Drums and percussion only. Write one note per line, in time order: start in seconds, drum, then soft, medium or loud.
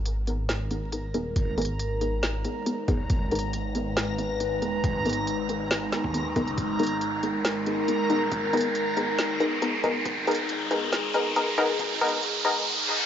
0.06 closed hi-hat medium
0.27 closed hi-hat medium
0.49 snare loud
0.49 closed hi-hat medium
0.71 closed hi-hat medium
0.92 closed hi-hat medium
1.14 closed hi-hat medium
1.36 kick loud
1.36 closed hi-hat medium
1.58 closed hi-hat soft
1.61 closed hi-hat medium
1.65 closed hi-hat medium
1.79 closed hi-hat medium
2.01 closed hi-hat medium
2.23 snare loud
2.23 closed hi-hat medium
2.45 closed hi-hat medium
2.66 closed hi-hat medium
2.88 kick loud
2.88 closed hi-hat medium
3.10 kick loud
3.10 closed hi-hat medium
3.31 closed hi-hat soft
3.35 closed hi-hat medium
3.39 closed hi-hat medium
3.53 closed hi-hat medium
3.75 closed hi-hat medium
3.97 snare loud
3.97 closed hi-hat medium
4.18 closed hi-hat medium
4.40 closed hi-hat medium
4.62 closed hi-hat medium
4.84 kick loud
4.84 closed hi-hat medium
5.06 closed hi-hat soft
5.09 closed hi-hat medium
5.13 closed hi-hat medium
5.27 closed hi-hat medium
5.49 closed hi-hat medium
5.71 snare loud
5.71 closed hi-hat medium
5.92 snare medium
5.92 closed hi-hat soft
6.04 kick medium
6.14 closed hi-hat medium
6.36 kick loud
6.36 closed hi-hat soft
6.48 closed hi-hat soft
6.58 kick loud
6.58 closed hi-hat medium
6.79 closed hi-hat soft
6.83 closed hi-hat medium
6.87 closed hi-hat medium
7.01 closed hi-hat medium
7.23 closed hi-hat medium
7.45 snare loud
7.45 closed hi-hat medium
7.66 closed hi-hat soft
7.88 closed hi-hat medium
8.10 closed hi-hat soft
8.32 kick loud
8.32 closed hi-hat medium
8.53 closed hi-hat soft
8.57 closed hi-hat medium
8.61 closed hi-hat medium
8.75 closed hi-hat medium
8.97 closed hi-hat medium
9.19 snare loud
9.19 closed hi-hat medium
9.40 closed hi-hat soft
9.62 closed hi-hat medium
9.84 kick loud
9.84 closed hi-hat soft
10.06 kick loud
10.06 closed hi-hat medium
10.27 closed hi-hat soft
10.31 closed hi-hat medium
10.35 closed hi-hat medium
10.49 closed hi-hat medium
10.71 closed hi-hat medium
10.93 snare loud
10.93 closed hi-hat medium
11.14 closed hi-hat medium
11.36 closed hi-hat medium
11.58 closed hi-hat medium
11.79 kick loud
11.79 closed hi-hat medium
12.01 closed hi-hat soft
12.05 closed hi-hat medium
12.08 closed hi-hat medium
12.23 closed hi-hat medium
12.45 closed hi-hat medium